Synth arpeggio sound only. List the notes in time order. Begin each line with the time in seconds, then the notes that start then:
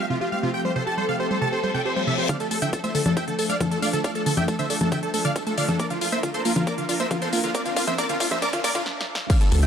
0.10 C3
0.21 G4
0.32 G3
0.43 C3
0.54 G4
0.65 G3
0.76 C3
0.87 G4
0.98 G3
1.09 C3
1.20 G4
1.31 G3
1.41 C3
1.52 G4
1.63 G3
1.74 C3
1.85 G4
1.96 G3
2.07 C3
2.18 G4
2.29 D3
2.40 D5
2.51 A3
2.62 D3
2.73 D5
2.84 A3
2.95 D3
3.06 D5
3.17 A3
3.28 D3
3.39 D5
3.50 A3
3.60 D3
3.71 D5
3.82 A3
3.93 D3
4.04 D5
4.15 A3
4.26 D3
4.37 D5
4.48 A3
4.59 D3
4.70 D5
4.81 A3
4.92 D3
5.03 D5
5.14 A3
5.25 D3
5.36 D5
5.47 A3
5.58 D3
5.69 D5
5.79 A#3
5.90 D3
6.01 D5
6.12 A#3
6.23 D3
6.34 D5
6.45 A#3
6.56 D3
6.67 A#3
6.78 D3
6.89 D5
7.00 A#3
7.11 D3
7.22 D5
7.33 A#3
7.44 D3
7.55 A#3
7.66 D3
7.77 D5
7.88 A#3
7.98 A#3
8.09 D3
8.20 D5
8.31 A#3
8.42 A#3
8.53 D3
8.64 A#3
8.75 D3
9.30 D3
9.41 D5
9.52 A3
9.63 D3